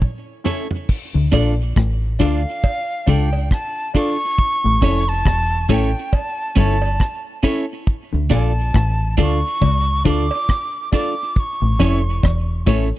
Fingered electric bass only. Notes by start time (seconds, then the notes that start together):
1.15 D2
1.34 A#1
1.77 A1
2.21 D2
3.09 C#2
4.65 A1
4.83 F1
5.27 E1
5.70 A1
6.58 G1
8.14 D2
8.32 A#1
8.75 A1
9.19 D2
9.62 C#2
10.06 D2
11.62 A1
11.81 F1
12.24 E1
12.68 A1